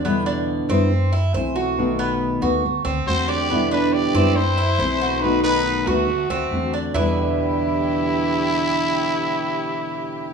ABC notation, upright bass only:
X:1
M:4/4
L:1/8
Q:1/4=139
K:Em
V:1 name="Upright bass" clef=bass
E,,3 F,,3 B,,,2- | B,,,3 D,,2 D,, E,,2- | E,,3 F,,3 B,,,2- | B,,,3 D,,2 D,, E,,2 |
E,,8- | E,,8 |]